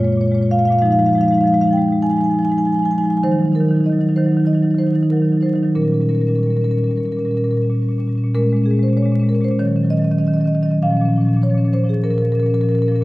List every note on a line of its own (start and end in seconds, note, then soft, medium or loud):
0.00 0.07 A#2 soft
0.00 0.13 G#3 soft
0.00 0.08 F4 soft
0.04 0.17 A#2 soft
0.04 0.15 F4 soft
0.04 0.12 C#5 medium
0.12 0.22 G#3 soft
0.12 0.23 F4 soft
0.12 0.21 C#5 medium
0.17 0.26 A#2 soft
0.17 0.28 C#5 medium
0.22 0.31 G#3 soft
0.22 0.31 F4 soft
0.26 0.34 A#2 soft
0.26 0.35 C#5 medium
0.31 0.44 A#2 soft
0.31 0.41 G#3 soft
0.31 0.38 F4 soft
0.35 0.45 F4 soft
0.35 0.43 C#5 medium
0.41 0.52 A#2 soft
0.41 0.51 G#3 soft
0.41 0.52 F4 soft
0.41 0.48 C#5 medium
0.51 0.60 A#2 soft
0.51 0.59 G#3 soft
0.51 0.60 F4 soft
0.51 0.59 F5 medium
0.59 0.70 A#2 soft
0.59 0.69 G#3 soft
0.59 0.67 F4 soft
0.59 0.65 F5 medium
0.65 0.79 G#3 soft
0.65 0.74 F4 soft
0.65 0.72 F5 medium
0.70 0.79 A#2 soft
0.70 0.79 F4 soft
0.70 0.79 F5 medium
0.79 0.90 F3 medium
0.79 0.90 G#3 medium
0.79 0.90 D#4 medium
0.79 0.86 F5 medium
0.86 0.92 F5 medium
0.90 0.99 F3 medium
0.90 0.99 G#3 soft
0.90 0.99 D#4 soft
0.90 0.99 F5 medium
0.99 1.09 F3 medium
0.99 1.06 G#3 medium
0.99 1.08 D#4 soft
0.99 1.06 F5 medium
1.06 1.18 F3 medium
1.06 1.15 G#3 soft
1.06 1.16 D#4 soft
1.06 1.13 F5 medium
1.13 1.23 G#3 soft
1.13 1.24 D#4 soft
1.13 1.21 F5 medium
1.18 1.26 F3 medium
1.18 1.28 F5 medium
1.23 1.34 F3 medium
1.23 1.31 G#3 soft
1.23 1.33 D#4 soft
1.28 1.38 G#3 soft
1.28 1.34 F5 medium
1.33 1.44 F3 medium
1.33 1.41 D#4 soft
1.33 1.41 F5 medium
1.38 1.46 G#3 soft
1.38 1.50 D#4 soft
1.38 1.47 F5 medium
1.44 1.53 F3 medium
1.44 1.54 G#3 soft
1.44 1.54 F5 medium
1.50 1.62 F3 medium
1.50 1.59 D#4 soft
1.54 1.62 G#3 soft
1.54 1.61 F5 medium
1.59 1.70 F3 medium
1.59 1.69 G#3 medium
1.59 1.67 D#4 soft
1.59 1.69 F5 medium
1.67 1.79 F3 medium
1.67 1.77 G#3 soft
1.67 1.75 D#4 soft
1.73 1.83 D#4 soft
1.73 2.01 G5 medium
1.77 1.88 F3 soft
1.77 1.84 G#3 soft
1.83 1.93 G#3 soft
1.83 1.90 D#4 soft
1.88 1.99 F3 medium
1.88 1.99 D#4 soft
1.93 1.99 G#3 soft
2.02 2.12 F3 medium
2.02 2.11 G#3 soft
2.02 2.10 D#4 soft
2.02 2.10 G#5 medium
2.10 2.20 F3 soft
2.10 2.18 G#3 soft
2.10 2.18 D#4 soft
2.10 2.17 G#5 medium
2.17 2.30 F3 soft
2.17 2.26 G#3 soft
2.17 2.26 D#4 soft
2.17 2.24 G#5 medium
2.24 2.34 G#3 soft
2.24 2.34 D#4 soft
2.24 2.31 G#5 medium
2.30 2.39 F3 soft
2.30 2.39 G#5 medium
2.34 2.43 G#3 soft
2.34 2.42 D#4 soft
2.39 2.48 F3 soft
2.39 2.50 D#4 soft
2.39 2.45 G#5 medium
2.43 2.52 G#3 soft
2.43 2.52 G#5 medium
2.48 2.57 F3 soft
2.48 2.58 D#4 soft
2.52 2.59 G#3 soft
2.52 2.58 G#5 medium
2.57 2.67 F3 soft
2.57 2.67 G#3 soft
2.57 2.66 D#4 soft
2.57 2.65 G#5 medium
2.65 2.76 F3 soft
2.65 2.75 G#3 soft
2.65 2.74 D#4 soft
2.65 2.72 G#5 medium
2.72 2.86 F3 soft
2.72 2.83 G#3 soft
2.72 2.82 D#4 soft
2.72 2.79 G#5 medium
2.79 2.92 G#3 soft
2.79 2.90 D#4 soft
2.79 2.85 G#5 medium
2.85 2.95 F3 soft
2.85 2.91 G#5 medium
2.90 3.01 G#3 soft
2.90 2.98 D#4 soft
2.90 2.98 G#5 medium
2.95 3.06 F3 soft
2.95 3.05 D#4 soft
2.95 3.04 G#5 medium
3.01 3.10 G#3 soft
3.01 3.10 G#5 medium
3.05 3.15 F3 soft
3.05 3.13 D#4 soft
3.10 3.21 G#3 soft
3.10 3.21 D#4 soft
3.10 3.17 G#5 medium
3.15 3.21 F3 soft
3.15 3.20 G#5 medium
3.23 3.32 D#3 medium
3.23 3.32 F#3 soft
3.23 3.31 D#4 medium
3.23 3.53 C5 medium
3.31 3.43 D#3 medium
3.31 3.40 F#3 soft
3.31 3.39 D#4 soft
3.39 3.48 F#3 soft
3.39 3.45 D#4 soft
3.43 3.52 D#3 medium
3.43 3.53 D#4 soft
3.48 3.60 D#3 medium
3.48 3.56 F#3 soft
3.53 3.65 F#3 soft
3.53 3.60 D#4 soft
3.53 3.84 A#4 medium
3.60 3.70 D#3 medium
3.60 3.69 D#4 soft
3.65 3.74 F#3 soft
3.65 3.76 D#4 soft
3.70 3.80 D#3 medium
3.70 3.84 F#3 soft
3.76 3.89 D#3 medium
3.76 3.84 D#4 soft
3.84 3.93 F#3 soft
3.84 3.92 D#4 soft
3.84 4.15 D#5 medium
3.89 3.99 D#3 medium
3.89 4.01 F#3 soft
3.89 4.01 D#4 soft
3.99 4.08 D#3 medium
3.99 4.09 F#3 soft
3.99 4.09 D#4 soft
4.08 4.18 D#3 medium
4.08 4.17 F#3 soft
4.08 4.16 D#4 soft
4.16 4.28 D#3 medium
4.16 4.26 F#3 soft
4.16 4.24 D#4 soft
4.16 4.46 C5 medium
4.24 4.34 F#3 soft
4.24 4.32 D#4 soft
4.28 4.37 D#3 medium
4.28 4.40 D#4 soft
4.34 4.45 D#3 medium
4.34 4.44 F#3 soft
4.40 4.47 D#4 soft
4.44 4.55 D#3 medium
4.44 4.53 F#3 soft
4.44 4.55 D#4 soft
4.44 4.77 D#5 medium
4.53 4.64 D#3 medium
4.53 4.62 F#3 soft
4.53 4.63 D#4 soft
4.62 4.74 D#3 medium
4.62 4.71 F#3 soft
4.62 4.71 D#4 soft
4.71 4.84 D#3 medium
4.71 4.80 F#3 soft
4.71 4.79 D#4 soft
4.78 4.88 F#3 soft
4.78 4.87 D#4 soft
4.78 5.09 C5 medium
4.84 4.93 D#3 soft
4.84 4.96 F#3 soft
4.84 4.95 D#4 soft
4.93 5.03 D#3 medium
4.93 5.05 F#3 soft
4.93 5.03 D#4 soft
5.03 5.12 D#3 medium
5.03 5.12 F#3 soft
5.03 5.11 D#4 soft
5.10 5.22 D#3 medium
5.10 5.20 F#3 soft
5.10 5.17 D#4 soft
5.10 5.41 A#4 medium
5.17 5.29 F#3 soft
5.17 5.25 D#4 soft
5.22 5.32 D#3 medium
5.22 5.34 D#4 soft
5.29 5.43 D#3 medium
5.29 5.38 F#3 soft
5.34 5.46 F#3 soft
5.34 5.41 D#4 soft
5.41 5.54 D#3 medium
5.41 5.48 D#4 soft
5.41 5.74 C5 medium
5.46 5.55 F#3 soft
5.46 5.55 D#4 soft
5.54 5.63 D#3 medium
5.54 5.64 F#3 soft
5.54 5.63 D#4 soft
5.63 5.71 D#3 medium
5.63 5.71 F#3 soft
5.63 5.71 D#4 soft
5.75 5.83 A#2 medium
5.75 5.84 G3 soft
5.75 5.84 C#4 soft
5.75 5.82 A#4 medium
5.82 5.92 A#2 soft
5.82 5.92 G3 soft
5.82 5.93 C#4 soft
5.82 5.88 A#4 soft
5.88 5.94 A#4 soft
5.92 6.01 A#2 soft
5.92 6.00 G3 soft
5.92 6.01 C#4 soft
5.92 6.01 A#4 soft
6.00 6.10 A#2 soft
6.00 6.10 G3 soft
6.00 6.09 C#4 soft
6.00 6.09 A#4 medium
6.09 6.20 A#2 soft
6.09 6.20 G3 soft
6.09 6.18 C#4 soft
6.09 6.15 A#4 medium
6.15 6.27 C#4 soft
6.15 6.21 A#4 medium
6.20 6.29 A#2 soft
6.20 6.29 G3 soft
6.20 6.28 A#4 soft
6.27 6.38 A#2 soft
6.27 6.37 G3 soft
6.27 6.35 C#4 soft
6.27 6.36 A#4 medium
6.35 6.47 A#2 soft
6.35 6.46 G3 soft
6.35 6.43 C#4 soft
6.35 6.43 A#4 soft
6.43 6.55 G3 soft
6.43 6.52 C#4 soft
6.43 6.50 A#4 medium
6.47 6.56 A#2 soft
6.47 6.57 A#4 medium
6.52 6.65 A#2 soft
6.52 6.63 G3 soft
6.52 6.61 C#4 soft
6.57 6.64 A#4 medium
6.61 6.74 A#2 soft
6.61 6.71 G3 soft
6.61 6.70 C#4 soft
6.61 6.71 A#4 soft
6.70 6.79 G3 soft
6.70 6.78 C#4 soft
6.70 6.77 A#4 medium
6.74 6.83 A#2 soft
6.74 6.84 A#4 soft
6.78 6.88 G3 soft
6.78 6.87 C#4 soft
6.83 6.90 A#2 soft
6.83 6.96 C#4 soft
6.83 6.91 A#4 medium
6.88 7.00 A#2 soft
6.88 6.97 G3 soft
6.88 6.98 A#4 medium
6.96 7.08 A#2 soft
6.96 7.04 G3 soft
6.96 7.05 C#4 soft
6.96 7.05 A#4 soft
7.04 7.17 A#2 soft
7.04 7.13 G3 soft
7.04 7.12 C#4 soft
7.04 7.12 A#4 soft
7.12 7.22 G3 soft
7.12 7.20 C#4 soft
7.12 7.19 A#4 medium
7.17 7.26 A#2 soft
7.17 7.28 C#4 soft
7.17 7.25 A#4 soft
7.22 7.35 A#2 soft
7.22 7.31 G3 soft
7.22 7.31 A#4 medium
7.28 7.39 G3 soft
7.28 7.37 C#4 soft
7.28 7.37 A#4 medium
7.35 7.44 A#2 soft
7.35 7.49 G3 soft
7.35 7.45 C#4 soft
7.35 7.44 A#4 medium
7.44 7.53 A#2 soft
7.44 7.55 C#4 soft
7.44 7.51 A#4 medium
7.49 7.57 G3 soft
7.49 7.57 A#4 medium
7.53 7.61 A#2 soft
7.53 7.62 C#4 soft
7.57 7.65 G3 soft
7.57 7.67 A#4 soft
7.61 7.70 A#2 soft
7.61 7.78 G3 soft
7.61 7.72 C#4 soft
7.70 7.79 A#2 soft
7.70 7.82 C#4 soft
7.79 7.89 A#2 soft
7.79 7.91 G3 soft
7.79 7.92 C#4 soft
7.89 7.98 A#2 soft
7.89 7.99 G3 soft
7.89 8.00 C#4 soft
7.98 8.08 A#2 soft
7.98 8.09 G3 soft
7.98 8.09 C#4 soft
8.08 8.16 A#2 soft
8.08 8.18 G3 soft
8.08 8.18 C#4 soft
8.16 8.24 A#2 soft
8.16 8.27 G3 soft
8.16 8.26 C#4 soft
8.24 8.31 A#2 soft
8.24 8.31 G3 soft
8.24 8.31 C#4 soft
8.35 8.43 A#2 medium
8.35 8.44 G#3 medium
8.35 8.43 C#4 medium
8.35 8.65 A#4 medium
8.43 8.54 A#2 soft
8.43 8.53 G#3 soft
8.43 8.49 C#4 soft
8.49 8.62 G#3 soft
8.49 8.57 C#4 soft
8.54 8.64 A#2 medium
8.54 8.63 C#4 soft
8.62 8.74 A#2 soft
8.62 8.71 G#3 soft
8.62 8.70 C#4 soft
8.62 8.82 G#4 medium
8.70 8.84 A#2 medium
8.70 8.79 G#3 soft
8.70 8.77 C#4 soft
8.77 8.88 G#3 soft
8.77 8.83 C#4 soft
8.83 8.94 A#2 soft
8.83 8.90 C#4 soft
8.83 8.98 C5 medium
8.88 8.97 G#3 soft
8.88 8.98 C#4 soft
8.94 9.02 A#2 soft
8.94 9.06 G#3 soft
8.94 9.27 C#5 medium
8.98 9.04 C#4 soft
9.02 9.12 A#2 soft
9.02 9.15 G#3 soft
9.02 9.12 C#4 soft
9.12 9.21 A#2 medium
9.12 9.23 G#3 soft
9.12 9.19 C#4 soft
9.19 9.32 A#2 soft
9.19 9.32 G#3 soft
9.19 9.27 C#4 soft
9.27 9.35 C#4 soft
9.27 9.44 A#4 medium
9.32 9.41 A#2 medium
9.32 9.41 G#3 soft
9.32 9.43 C#4 soft
9.41 9.51 A#2 soft
9.41 9.50 G#3 soft
9.41 9.51 C#4 soft
9.41 9.60 C5 medium
9.50 9.56 A#2 medium
9.50 9.56 G#3 soft
9.50 9.56 C#4 soft
9.59 9.67 D#3 medium
9.59 9.67 F#3 soft
9.59 9.67 C#4 soft
9.59 9.89 C#5 medium
9.67 9.76 D#3 soft
9.67 9.76 F#3 soft
9.67 9.76 C#4 soft
9.76 9.85 D#3 medium
9.76 9.83 F#3 soft
9.76 9.84 C#4 soft
9.83 9.93 D#3 soft
9.83 9.91 F#3 soft
9.83 9.93 C#4 soft
9.90 10.02 D#3 medium
9.90 9.99 F#3 soft
9.90 10.01 C#4 soft
9.90 9.98 D#5 medium
9.98 10.11 D#3 soft
9.98 10.08 F#3 soft
9.98 10.11 C#4 soft
9.98 10.04 D#5 medium
10.04 10.16 F#3 soft
10.04 10.12 D#5 medium
10.11 10.20 D#3 soft
10.11 10.19 C#4 soft
10.11 10.18 D#5 medium
10.16 10.28 D#3 soft
10.16 10.24 F#3 soft
10.16 10.28 C#4 soft
10.16 10.27 D#5 medium
10.24 10.37 D#3 medium
10.24 10.31 F#3 soft
10.24 10.36 C#4 soft
10.24 10.34 D#5 medium
10.31 10.40 F#3 soft
10.31 10.41 D#5 medium
10.36 10.46 D#3 soft
10.36 10.45 C#4 soft
10.40 10.49 F#3 soft
10.40 10.47 D#5 medium
10.45 10.55 D#3 medium
10.45 10.53 C#4 soft
10.45 10.55 D#5 medium
10.49 10.57 F#3 soft
10.53 10.62 D#3 soft
10.53 10.66 F#3 soft
10.53 10.61 C#4 soft
10.53 10.63 D#5 medium
10.61 10.71 D#3 medium
10.61 10.70 C#4 soft
10.61 10.71 D#5 medium
10.66 10.73 F#3 soft
10.70 10.79 D#3 soft
10.70 10.79 F#3 soft
10.70 10.79 C#4 soft
10.70 10.79 D#5 medium
10.83 10.93 A#2 medium
10.83 10.91 F3 medium
10.83 10.90 C#4 medium
10.83 11.41 F5 medium
10.90 11.01 A#2 soft
10.90 11.00 F3 soft
10.90 10.97 C#4 soft
10.97 11.08 F3 soft
10.97 11.05 C#4 soft
11.01 11.09 A#2 medium
11.01 11.13 C#4 soft
11.08 11.18 A#2 soft
11.08 11.16 F3 soft
11.13 11.25 F3 soft
11.13 11.21 C#4 soft
11.18 11.27 A#2 medium
11.18 11.29 C#4 soft
11.25 11.36 A#2 soft
11.25 11.33 F3 soft
11.25 11.35 C#4 soft
11.33 11.46 A#2 soft
11.33 11.43 F3 soft
11.33 11.42 C#4 soft
11.42 11.54 A#2 soft
11.42 11.51 F3 soft
11.42 11.50 C#4 soft
11.42 11.72 C#5 medium
11.50 11.60 F3 soft
11.50 11.58 C#4 soft
11.54 11.65 A#2 medium
11.54 11.65 C#4 soft
11.60 11.68 F3 soft
11.65 11.74 A#2 soft
11.65 11.75 F3 soft
11.65 11.72 C#4 soft
11.72 11.84 A#2 medium
11.72 11.84 F3 soft
11.72 11.79 C#4 soft
11.72 11.89 C5 medium
11.79 11.86 C#4 soft
11.84 11.93 A#2 medium
11.84 11.94 F3 soft
11.84 11.93 C#4 soft
11.89 12.05 G#4 medium
11.93 12.01 A#2 soft
11.93 12.01 F3 soft
11.93 12.01 C#4 soft
12.04 12.14 A#2 medium
12.04 12.14 F3 soft
12.04 12.11 C#4 soft
12.04 12.10 A#4 medium
12.10 12.24 A#2 soft
12.10 12.22 F3 soft
12.10 12.18 C#4 soft
12.10 12.18 A#4 medium
12.18 12.29 F3 soft
12.18 12.27 C#4 soft
12.18 12.25 A#4 medium
12.24 12.34 A#2 soft
12.24 12.35 C#4 soft
12.24 12.32 A#4 medium
12.29 12.38 F3 soft
12.29 12.40 A#4 medium
12.34 12.43 A#2 soft
12.34 12.46 F3 soft
12.34 12.43 C#4 soft
12.40 12.53 A#2 soft
12.40 12.50 C#4 soft
12.40 12.46 A#4 medium
12.46 12.56 F3 soft
12.46 12.57 C#4 soft
12.46 12.54 A#4 medium
12.53 12.63 A#2 soft
12.53 12.63 F3 soft
12.53 12.64 C#4 soft
12.53 12.61 A#4 medium
12.61 12.72 A#2 soft
12.61 12.71 F3 soft
12.61 12.72 C#4 soft
12.61 12.69 A#4 medium
12.69 12.82 A#2 soft
12.69 12.79 F3 soft
12.69 12.79 C#4 soft
12.69 12.75 A#4 medium
12.75 12.86 C#4 soft
12.75 12.82 A#4 medium
12.79 12.91 A#2 soft
12.79 12.88 F3 soft
12.79 12.88 A#4 medium
12.86 12.96 F3 soft
12.86 12.95 C#4 soft
12.86 12.96 A#4 medium
12.91 13.01 A#2 soft
12.91 13.04 C#4 soft
12.96 13.04 F3 soft
12.96 13.04 A#4 medium
13.01 13.04 A#2 soft